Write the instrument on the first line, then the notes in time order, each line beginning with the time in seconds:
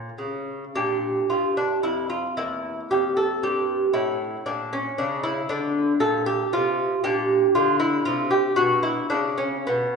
lute
Already playing: C#4
0.18 C#3
0.76 A#2 D4 G4
1.30 G2 F4
1.57 D4
1.83 F2 E4
2.10 F4
2.37 E2 A#3 E4
2.91 F2 G4
3.17 A4
3.43 G2 G4
3.94 A2 C#4 E4
4.46 A#2 D4
4.73 C#4
4.98 C#3 D4
5.23 E4
5.49 D3 D4
6.00 A#2 A4
6.26 G4
6.53 C3 F4
7.04 A#2 D4 G4
7.55 D3 F4
7.80 E4
8.05 C3 F4
8.31 G4
8.56 B2 D4 F#4
8.83 E4
9.10 C#3 D4
9.38 C#4
9.67 B2 B3